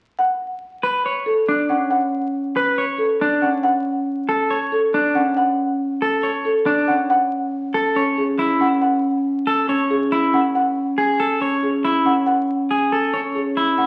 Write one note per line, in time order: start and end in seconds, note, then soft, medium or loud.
0.19 0.47 F#5 medium
0.83 1.05 B4 medium
1.06 1.33 C#5 soft
1.26 1.54 A4 soft
1.48 1.76 D4 soft
1.69 3.41 C#4 medium
1.69 1.89 F#5 soft
1.91 2.19 F#5 medium
2.57 2.84 B4 medium
2.78 3.06 C#5 soft
2.98 3.27 A4 soft
3.21 3.49 D4 medium
3.42 5.14 C#4 medium
3.42 3.62 F#5 soft
3.63 3.92 F#5 medium
4.29 4.57 A4 medium
4.50 4.78 C#5 soft
4.72 5.00 A4 soft
4.94 5.22 D4 medium
5.15 6.87 C#4 medium
5.15 5.35 F#5 soft
5.37 5.65 F#5 medium
6.02 6.30 A4 medium
6.23 6.51 C#5 soft
6.45 6.73 A4 soft
6.66 6.94 D4 medium
6.88 7.94 C#4 medium
6.88 7.09 F#5 medium
7.10 7.38 F#5 medium
7.74 8.02 A4 medium
7.95 8.58 C#4 medium
7.95 8.24 C#5 medium
8.18 8.45 G#4 soft
8.39 8.67 E4 medium
8.59 9.67 C#4 medium
8.59 8.80 F#5 medium
8.82 9.10 F#5 medium
9.47 9.69 A4 medium
9.68 10.31 C#4 medium
9.68 9.97 C#5 medium
9.90 10.18 G#4 medium
10.12 10.40 E4 medium
10.33 11.39 C#4 medium
10.33 10.54 F#5 soft
10.55 10.83 F#5 medium
10.98 11.26 G#4 medium
11.20 11.41 A4 medium
11.40 12.03 C#4 soft
11.40 11.69 C#5 soft
11.63 11.91 G#4 soft
11.85 12.12 E4 medium
12.05 13.12 C#4 medium
12.05 12.25 F#5 soft
12.26 12.55 F#5 medium
12.71 12.99 G#4 soft
12.92 13.20 A4 medium
13.13 13.76 C#4 soft
13.13 13.42 C#5 soft
13.35 13.63 G#4 soft
13.57 13.85 E4 medium
13.77 13.87 C#4 medium
13.77 13.87 F#5 soft